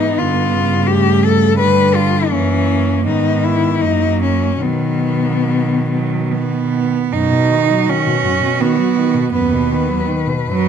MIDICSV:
0, 0, Header, 1, 5, 480
1, 0, Start_track
1, 0, Key_signature, 5, "major"
1, 0, Tempo, 711744
1, 119, Time_signature, 3, 2, 24, 8
1, 1076, Tempo, 739827
1, 2516, Tempo, 817439
1, 3476, Tempo, 878477
1, 3956, Tempo, 797872
1, 4436, Tempo, 735294
1, 5396, Tempo, 764331
1, 6707, End_track
2, 0, Start_track
2, 0, Title_t, "Cello"
2, 0, Program_c, 0, 42
2, 0, Note_on_c, 0, 63, 56
2, 124, Note_on_c, 0, 65, 55
2, 134, Note_off_c, 0, 63, 0
2, 588, Note_on_c, 0, 67, 61
2, 598, Note_off_c, 0, 65, 0
2, 837, Note_on_c, 0, 69, 61
2, 847, Note_off_c, 0, 67, 0
2, 1062, Note_off_c, 0, 69, 0
2, 1066, Note_on_c, 0, 71, 62
2, 1305, Note_on_c, 0, 65, 58
2, 1315, Note_off_c, 0, 71, 0
2, 1529, Note_on_c, 0, 61, 58
2, 1539, Note_off_c, 0, 65, 0
2, 2015, Note_off_c, 0, 61, 0
2, 2029, Note_on_c, 0, 63, 56
2, 2272, Note_on_c, 0, 64, 57
2, 2282, Note_off_c, 0, 63, 0
2, 2515, Note_on_c, 0, 63, 54
2, 2524, Note_off_c, 0, 64, 0
2, 2747, Note_off_c, 0, 63, 0
2, 2755, Note_on_c, 0, 61, 48
2, 2988, Note_on_c, 0, 59, 55
2, 2997, Note_off_c, 0, 61, 0
2, 3957, Note_off_c, 0, 59, 0
2, 4449, Note_on_c, 0, 66, 43
2, 5855, Note_off_c, 0, 66, 0
2, 5872, Note_on_c, 0, 71, 43
2, 6707, Note_off_c, 0, 71, 0
2, 6707, End_track
3, 0, Start_track
3, 0, Title_t, "Cello"
3, 0, Program_c, 1, 42
3, 0, Note_on_c, 1, 59, 40
3, 588, Note_on_c, 1, 57, 48
3, 599, Note_off_c, 1, 59, 0
3, 1064, Note_off_c, 1, 57, 0
3, 1068, Note_on_c, 1, 55, 42
3, 1536, Note_off_c, 1, 55, 0
3, 1542, Note_on_c, 1, 58, 43
3, 2032, Note_on_c, 1, 59, 47
3, 2042, Note_off_c, 1, 58, 0
3, 2514, Note_on_c, 1, 58, 37
3, 2523, Note_off_c, 1, 59, 0
3, 2984, Note_off_c, 1, 58, 0
3, 2987, Note_on_c, 1, 54, 38
3, 3702, Note_off_c, 1, 54, 0
3, 3718, Note_on_c, 1, 54, 48
3, 3948, Note_on_c, 1, 59, 54
3, 3956, Note_off_c, 1, 54, 0
3, 4439, Note_on_c, 1, 63, 56
3, 4448, Note_off_c, 1, 59, 0
3, 4935, Note_on_c, 1, 61, 62
3, 4945, Note_off_c, 1, 63, 0
3, 5405, Note_on_c, 1, 59, 61
3, 5414, Note_off_c, 1, 61, 0
3, 5855, Note_off_c, 1, 59, 0
3, 5859, Note_on_c, 1, 59, 51
3, 6327, Note_off_c, 1, 59, 0
3, 6598, Note_on_c, 1, 54, 58
3, 6707, Note_off_c, 1, 54, 0
3, 6707, End_track
4, 0, Start_track
4, 0, Title_t, "Cello"
4, 0, Program_c, 2, 42
4, 0, Note_on_c, 2, 52, 38
4, 118, Note_off_c, 2, 52, 0
4, 125, Note_on_c, 2, 50, 42
4, 353, Note_on_c, 2, 49, 37
4, 363, Note_off_c, 2, 50, 0
4, 1083, Note_on_c, 2, 50, 39
4, 1093, Note_off_c, 2, 49, 0
4, 1551, Note_off_c, 2, 50, 0
4, 1555, Note_on_c, 2, 52, 38
4, 2019, Note_off_c, 2, 52, 0
4, 2028, Note_on_c, 2, 51, 36
4, 2523, Note_on_c, 2, 54, 34
4, 2531, Note_off_c, 2, 51, 0
4, 2984, Note_off_c, 2, 54, 0
4, 2988, Note_on_c, 2, 51, 33
4, 4288, Note_off_c, 2, 51, 0
4, 4436, Note_on_c, 2, 42, 35
4, 4561, Note_on_c, 2, 47, 37
4, 4571, Note_off_c, 2, 42, 0
4, 4680, Note_on_c, 2, 51, 39
4, 4689, Note_off_c, 2, 47, 0
4, 4803, Note_on_c, 2, 54, 34
4, 4813, Note_off_c, 2, 51, 0
4, 4921, Note_on_c, 2, 51, 39
4, 4931, Note_off_c, 2, 54, 0
4, 5046, Note_on_c, 2, 47, 36
4, 5056, Note_off_c, 2, 51, 0
4, 5161, Note_on_c, 2, 42, 35
4, 5171, Note_off_c, 2, 47, 0
4, 5275, Note_on_c, 2, 47, 36
4, 5285, Note_off_c, 2, 42, 0
4, 5399, Note_on_c, 2, 51, 38
4, 5408, Note_off_c, 2, 47, 0
4, 5509, Note_on_c, 2, 54, 35
4, 5518, Note_off_c, 2, 51, 0
4, 5629, Note_on_c, 2, 51, 36
4, 5638, Note_off_c, 2, 54, 0
4, 5738, Note_on_c, 2, 47, 40
4, 5748, Note_off_c, 2, 51, 0
4, 5847, Note_off_c, 2, 47, 0
4, 5851, Note_on_c, 2, 42, 40
4, 5979, Note_on_c, 2, 47, 35
4, 5988, Note_off_c, 2, 42, 0
4, 6097, Note_on_c, 2, 51, 37
4, 6106, Note_off_c, 2, 47, 0
4, 6205, Note_on_c, 2, 54, 35
4, 6215, Note_off_c, 2, 51, 0
4, 6324, Note_on_c, 2, 51, 39
4, 6333, Note_off_c, 2, 54, 0
4, 6444, Note_on_c, 2, 47, 36
4, 6454, Note_off_c, 2, 51, 0
4, 6574, Note_on_c, 2, 42, 39
4, 6583, Note_off_c, 2, 47, 0
4, 6707, Note_off_c, 2, 42, 0
4, 6707, End_track
5, 0, Start_track
5, 0, Title_t, "Cello"
5, 0, Program_c, 3, 42
5, 0, Note_on_c, 3, 44, 43
5, 114, Note_on_c, 3, 43, 47
5, 124, Note_off_c, 3, 44, 0
5, 1547, Note_off_c, 3, 43, 0
5, 1551, Note_on_c, 3, 42, 41
5, 2027, Note_on_c, 3, 44, 40
5, 2037, Note_off_c, 3, 42, 0
5, 2515, Note_on_c, 3, 42, 39
5, 2524, Note_off_c, 3, 44, 0
5, 2987, Note_off_c, 3, 42, 0
5, 2997, Note_on_c, 3, 47, 36
5, 4293, Note_off_c, 3, 47, 0
5, 4435, Note_on_c, 3, 47, 42
5, 4839, Note_off_c, 3, 47, 0
5, 5875, Note_on_c, 3, 39, 44
5, 6265, Note_off_c, 3, 39, 0
5, 6707, End_track
0, 0, End_of_file